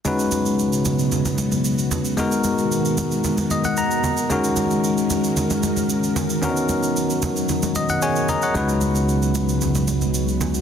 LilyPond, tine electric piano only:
\new Staff \with { instrumentName = "Tine electric piano" } { \time 4/4 \key cis \mixolydian \tempo 4 = 113 << { r1 | r2 r8 dis''16 fis''16 ais''4 | r1 | r2 r8 dis''16 fis''16 <gis' cis'' gis''>8 <ais' dis'' ais''>16 <cis'' fis''>16~ |
<cis'' fis''>16 r2. r8. | } \\ { <gis cis' dis' fis' b'>1 | <gis b dis' fis' ais'>1 | <gis cis' dis' fis' ais'>1 | <b cis' d' dis' fis' ais'>1 |
<gis cis' dis' fis' b'>1 | } >> }